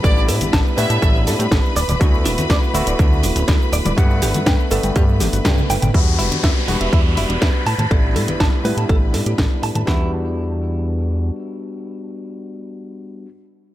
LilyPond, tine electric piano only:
\new Staff \with { instrumentName = "Tine electric piano" } { \time 4/4 \key e \minor \tempo 4 = 122 <g b d' e'>4. <g b d' e'>2 r8 | <a b e' fis'>4. <a b e' fis'>2~ <a b e' fis'>8 | <a b d' fis''>4. <a b d'>2~ <a b d'>8 | <g b d' fis'>4. <g b d' fis'>2 r8 |
<g b d' e'>4. <g b d' e'>2~ <g b d' e'>8 | <g b d' fis'>1~ | <g b d' fis'>1 | }